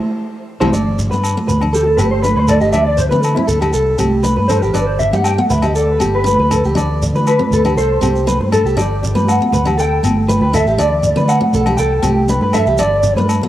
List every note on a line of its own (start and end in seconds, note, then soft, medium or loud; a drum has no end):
0.60 0.70 C2 medium
0.60 0.69 E3 medium
0.60 0.69 G3 medium
0.60 0.69 C4 medium
0.60 0.69 E4 medium
0.60 0.69 G4 medium
0.60 0.69 C5 medium
0.60 high conga medium
0.60 low agogo medium
0.72 1.08 G1 medium
0.72 0.92 D4 medium
0.72 0.97 D5 medium
0.72 low conga medium
0.72 low agogo medium
0.72 shekere medium
0.99 low conga medium
0.99 shekere medium
1.11 1.34 G2 medium
1.11 1.31 B3 medium
1.11 1.35 B4 medium
1.11 shekere soft
1.24 low agogo medium
1.24 shekere medium
1.37 1.55 B3 medium
1.37 high conga medium
1.48 1.95 D2 medium
1.48 1.61 B4 medium
1.48 low conga medium
1.48 shekere medium
1.61 1.80 D4 medium
1.61 muted clean electric guitar stroke medium
1.61 low agogo medium
1.73 1.85 G4 medium
1.73 1.97 A4 medium
1.73 shekere medium
1.86 1.98 A4 medium
1.97 2.33 G1 medium
1.97 2.18 B3 medium
1.97 2.23 G4 medium
1.97 2.10 B4 medium
1.97 high conga medium
1.97 low agogo medium
1.97 shekere medium
2.11 2.23 C5 medium
2.22 2.42 D4 medium
2.22 2.35 B4 medium
2.22 2.36 B4 medium
2.22 high conga medium
2.22 shekere medium
2.36 2.59 D2 medium
2.36 2.48 B4 medium
2.36 2.49 C5 medium
2.36 high conga medium
2.48 2.67 D4 medium
2.48 2.60 A4 medium
2.48 2.60 D5 medium
2.48 low conga medium
2.48 low agogo medium
2.48 shekere medium
2.60 2.72 G1 medium
2.60 2.73 G4 medium
2.60 2.72 D#5 medium
2.60 shekere soft
2.73 3.08 D2 medium
2.73 2.92 D4 medium
2.73 2.98 D5 medium
2.73 2.84 E5 medium
2.73 low conga medium
2.73 low agogo medium
2.73 shekere medium
2.85 2.98 D5 medium
2.97 3.09 C5 medium
2.97 low conga medium
2.97 shekere medium
3.09 3.35 D3 medium
3.09 3.30 C4 medium
3.09 3.21 B4 medium
3.09 3.36 B4 medium
3.09 high conga medium
3.09 shekere soft
3.21 3.35 A4 medium
3.21 low agogo medium
3.21 shekere medium
3.35 3.55 C4 medium
3.35 3.43 E4 medium
3.35 high conga medium
3.47 3.72 D2 medium
3.47 3.61 A4 medium
3.47 low conga medium
3.47 shekere medium
3.61 3.80 D4 medium
3.61 3.73 G4 medium
3.61 low agogo medium
3.61 shekere soft
3.73 3.98 C2 medium
3.73 3.98 A4 medium
3.73 shekere medium
3.98 4.34 C2 medium
3.98 4.17 C4 medium
3.98 4.23 G4 medium
3.98 high conga medium
3.98 low agogo medium
3.98 shekere medium
4.23 4.42 D4 medium
4.23 4.36 B4 medium
4.23 high conga medium
4.23 shekere medium
4.36 4.61 G2 medium
4.36 4.49 B4 medium
4.36 high conga medium
4.48 4.68 D4 medium
4.48 4.62 A4 medium
4.48 4.61 C5 medium
4.48 low conga medium
4.48 low agogo medium
4.48 shekere medium
4.61 4.74 G#1 medium
4.61 4.74 G4 medium
4.61 4.73 A#4 medium
4.61 shekere soft
4.73 5.10 G1 medium
4.73 4.93 D4 medium
4.73 4.87 B4 medium
4.73 4.99 D5 medium
4.73 low conga medium
4.73 low agogo medium
4.73 shekere medium
4.87 5.00 C5 medium
4.99 5.13 E5 medium
4.99 low conga medium
4.99 shekere medium
5.13 5.36 G2 medium
5.13 5.31 B3 medium
5.13 5.37 G4 medium
5.13 5.25 F#5 medium
5.13 high conga medium
5.13 shekere soft
5.24 5.38 G5 medium
5.24 low agogo medium
5.24 shekere medium
5.38 5.56 B3 medium
5.38 5.51 F#5 medium
5.38 high conga medium
5.50 5.97 D2 medium
5.50 5.63 B4 medium
5.50 5.63 E5 medium
5.50 low conga medium
5.50 shekere medium
5.62 5.81 D4 medium
5.62 5.75 G4 medium
5.62 5.76 D#5 medium
5.62 low agogo medium
5.62 shekere soft
5.75 5.99 A4 medium
5.75 5.90 D5 medium
5.75 shekere medium
5.90 6.01 B4 medium
6.00 6.36 G1 medium
6.00 6.18 B3 medium
6.00 6.25 G4 medium
6.00 6.14 G4 soft
6.00 high conga medium
6.00 low agogo medium
6.00 shekere medium
6.15 6.61 B4 medium
6.24 6.43 D4 medium
6.24 6.38 B4 medium
6.24 high conga medium
6.24 shekere medium
6.38 6.62 D2 medium
6.38 6.51 B4 medium
6.38 high conga medium
6.51 6.69 D4 medium
6.51 6.64 A4 medium
6.51 low conga medium
6.51 low agogo medium
6.51 shekere medium
6.64 6.75 C#2 medium
6.64 6.76 G4 medium
6.64 shekere soft
6.75 7.11 D2 medium
6.75 6.93 D4 medium
6.75 7.01 D5 medium
6.75 low conga medium
6.75 low agogo medium
6.75 shekere medium
7.02 low conga medium
7.02 shekere medium
7.13 7.37 D3 medium
7.13 7.39 B4 medium
7.13 high conga medium
7.13 shekere soft
7.27 7.74 B4 medium
7.27 low agogo medium
7.27 shekere medium
7.39 7.57 C4 medium
7.39 high conga medium
7.51 7.74 D2 medium
7.51 7.65 A4 medium
7.51 low conga medium
7.51 shekere medium
7.65 7.83 D4 medium
7.65 7.77 G4 medium
7.65 low agogo medium
7.65 shekere soft
7.76 7.99 C2 loud
7.76 8.01 A4 medium
7.76 8.49 C5 medium
7.76 shekere medium
8.01 8.37 C2 medium
8.01 8.19 C4 medium
8.01 8.26 G4 medium
8.01 high conga medium
8.01 low agogo medium
8.01 shekere medium
8.16 shekere soft
8.27 8.45 D4 medium
8.27 8.39 B4 medium
8.27 high conga medium
8.27 shekere medium
8.39 8.63 G2 medium
8.39 muted clean electric guitar stroke medium
8.39 high conga medium
8.52 8.70 D4 medium
8.52 8.77 A4 medium
8.52 8.65 A4 medium
8.52 low agogo medium
8.52 shekere medium
8.64 8.76 C2 medium
8.64 8.77 G4 medium
8.64 shekere soft
8.76 9.12 G1 medium
8.76 8.95 D4 medium
8.76 9.25 G4 medium
8.76 9.01 D5 medium
8.76 low conga medium
8.76 low agogo medium
8.76 shekere medium
9.03 low conga medium
9.03 shekere medium
9.15 9.38 G2 medium
9.15 9.33 B3 medium
9.15 9.39 B4 medium
9.15 high conga medium
9.15 shekere soft
9.29 9.75 F#5 medium
9.29 low agogo medium
9.29 shekere medium
9.41 9.59 B3 medium
9.41 high conga medium
9.53 9.99 D2 medium
9.53 9.65 B4 medium
9.53 low conga medium
9.53 shekere medium
9.65 9.83 D4 medium
9.65 9.77 G4 medium
9.65 low agogo medium
9.65 shekere soft
9.78 10.02 A4 medium
9.78 10.50 G5 loud
9.78 shekere medium
10.03 10.38 G1 medium
10.03 10.21 B3 medium
10.03 high conga medium
10.03 low agogo medium
10.03 shekere medium
10.28 10.41 B4 medium
10.28 muted steel-string acoustic guitar stroke medium
10.28 high conga medium
10.28 shekere medium
10.40 10.64 D2 medium
10.40 10.53 B4 medium
10.40 high conga medium
10.53 10.71 D4 medium
10.53 10.66 A4 medium
10.53 10.78 E5 medium
10.53 low conga medium
10.53 low agogo medium
10.53 shekere medium
10.66 10.77 A1 medium
10.66 10.79 G4 medium
10.66 shekere soft
10.78 11.13 D2 medium
10.78 10.96 D4 medium
10.78 11.25 D5 medium
10.78 11.03 D5 medium
10.78 low conga medium
10.78 low agogo medium
10.78 shekere medium
11.03 low conga medium
11.03 shekere medium
11.16 11.39 D3 medium
11.16 11.34 C4 medium
11.16 11.41 B4 medium
11.16 high conga medium
11.16 shekere soft
11.29 11.75 F#5 medium
11.29 low agogo medium
11.29 shekere medium
11.41 11.59 C4 medium
11.41 high conga medium
11.53 11.76 B1 medium
11.53 11.66 A4 medium
11.53 low conga medium
11.53 shekere medium
11.66 11.85 D4 medium
11.66 11.79 G4 medium
11.66 low agogo medium
11.66 shekere soft
11.77 12.01 C2 medium
11.77 12.03 A4 medium
11.77 12.49 G5 loud
11.77 shekere medium
12.03 12.38 C2 medium
12.03 12.21 C4 medium
12.03 12.28 G4 medium
12.03 high conga medium
12.03 low agogo medium
12.03 shekere medium
12.28 12.47 D4 medium
12.28 12.41 B4 medium
12.28 high conga medium
12.28 shekere medium
12.41 12.64 G2 medium
12.41 12.54 B4 medium
12.41 high conga medium
12.53 12.72 D4 medium
12.53 12.66 A4 medium
12.53 12.78 E5 medium
12.53 low conga medium
12.53 low agogo medium
12.53 shekere medium
12.66 12.78 C2 medium
12.66 12.79 G4 medium
12.66 shekere soft
12.78 13.14 G1 medium
12.78 12.97 D4 medium
12.78 13.26 D5 medium
12.78 13.04 D5 loud
12.78 low conga medium
12.78 low agogo medium
12.78 shekere medium
13.03 low conga medium
13.03 shekere medium
13.16 13.40 G2 medium
13.16 13.36 B3 medium
13.16 13.41 B4 medium
13.16 high conga medium
13.16 shekere soft
13.29 low agogo medium
13.29 shekere medium
13.42 13.48 B3 medium
13.42 high conga medium